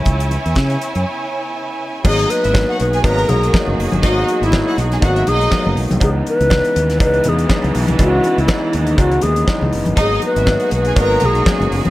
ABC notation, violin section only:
X:1
M:4/4
L:1/16
Q:"Swing 16ths" 1/4=121
K:G#m
V:1 name="Violin section"
[Ecg]16 | [Dd]2 z [Ee] z [Ff] z [Gg] [Aa]4 z4 | [Dd]2 z [Ee] z [Ff] z [Gg] [Ff] [Ee] [Dd]4 z2 | z16 |
z16 | [Dd]2 z [Ee] z [Ff] z [Gg] [Aa]4 z4 |]